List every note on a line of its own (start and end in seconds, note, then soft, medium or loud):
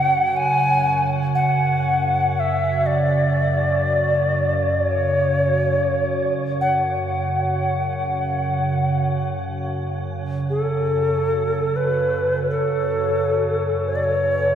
0.00 11.88 F#2 medium
0.00 11.89 C#3 medium
0.00 0.38 F#5 medium
0.37 1.10 G#5 medium
1.35 2.41 F#5 medium
2.39 2.88 E5 medium
2.86 4.93 D5 medium
4.91 6.33 C#5 medium
6.61 9.05 F#5 medium
10.50 11.78 A4 medium
11.76 12.49 B4 medium
11.90 14.55 F#2 medium
11.90 14.55 C#3 medium
12.32 14.55 C#5 soft
12.50 13.90 A4 medium
13.88 13.97 C#5 medium
13.96 14.55 B4 soft
13.96 14.05 D5 medium
14.04 14.55 C#5 medium